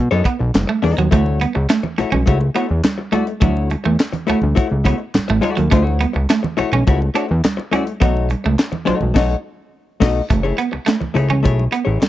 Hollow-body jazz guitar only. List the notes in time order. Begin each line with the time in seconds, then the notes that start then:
0.11 B3 D#4 A4 C#5
0.39 muted hollow-body jazz guitar stroke
0.67 muted hollow-body jazz guitar stroke
0.82 B3 D#4 A4 D#5
0.97 muted hollow-body jazz guitar stroke
1.11 A3 E4 F#4 C#5
1.55 muted hollow-body jazz guitar stroke
1.83 muted hollow-body jazz guitar stroke
1.98 A3 E4 F#4 C#5
2.12 muted hollow-body jazz guitar stroke
2.26 A3 E4 F#4 C#5
2.40 muted hollow-body jazz guitar stroke
2.55 A3 E4 F#4 C#5
2.69 muted hollow-body jazz guitar stroke
2.98 muted hollow-body jazz guitar stroke
3.12 A3 E4 F#4 D5
3.27 muted hollow-body jazz guitar stroke
3.40 A3 E4 F#4 C#5
3.84 muted hollow-body jazz guitar stroke
4.12 muted hollow-body jazz guitar stroke
4.27 A3 E4 F#4 C#5
4.41 muted hollow-body jazz guitar stroke
4.55 A3 E4 F#4 C#5
4.69 muted hollow-body jazz guitar stroke
4.84 A3 E4 F#4 C#5
4.98 muted hollow-body jazz guitar stroke
5.28 muted hollow-body jazz guitar stroke
5.41 A3 E4 F#4 D5
5.56 muted hollow-body jazz guitar stroke
5.70 G#3 D#4 F4 C5
5.81 A3 E4 F#4 C#5
6.13 muted hollow-body jazz guitar stroke
6.43 muted hollow-body jazz guitar stroke
6.57 A3 E4 F#4 C#5
6.72 muted hollow-body jazz guitar stroke
6.87 A3 E4 F#4 C#5
7.01 muted hollow-body jazz guitar stroke
7.14 A3 E4 F#4 C#5
7.29 muted hollow-body jazz guitar stroke
7.57 muted hollow-body jazz guitar stroke
7.71 A3 E4 F#4 D5
7.86 muted hollow-body jazz guitar stroke
8.00 A3 D#4 F#4 C#5
8.44 muted hollow-body jazz guitar stroke
8.72 muted hollow-body jazz guitar stroke
8.85 A3 D#4 F#4 C#5
9.00 muted hollow-body jazz guitar stroke
9.14 A3 D#4 F#4 C#5
10.00 A3 D#4 F#4 D#5
10.29 muted hollow-body jazz guitar stroke
10.43 A3 E4 G#4 C#5
10.57 muted hollow-body jazz guitar stroke
10.72 muted hollow-body jazz guitar stroke
10.86 muted hollow-body jazz guitar stroke
11.01 muted hollow-body jazz guitar stroke
11.14 A3 E4 G#4 C#5
11.30 muted hollow-body jazz guitar stroke
11.43 A3 E4 G#4 C#5
11.71 muted hollow-body jazz guitar stroke
11.85 A3 E4 G#4 C#5
12.00 muted hollow-body jazz guitar stroke